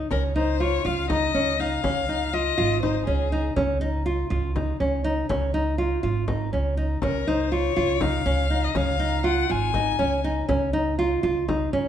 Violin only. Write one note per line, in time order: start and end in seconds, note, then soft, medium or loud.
0.11 0.22 A#4 medium
0.36 0.63 C5 medium
0.61 0.87 C#5 medium
0.86 1.10 F5 medium
1.11 1.62 D#5 loud
1.60 2.35 F5 medium
2.33 2.82 D#5 medium
2.82 3.06 C5 medium
3.06 3.41 G#4 medium
7.03 7.29 A#4 medium
7.28 7.54 C5 medium
7.53 8.03 C#5 medium
8.02 8.66 F5 medium
8.64 8.78 D#5 medium
8.77 9.25 F5 medium
9.26 9.52 F#5 medium
9.51 10.25 G#5 medium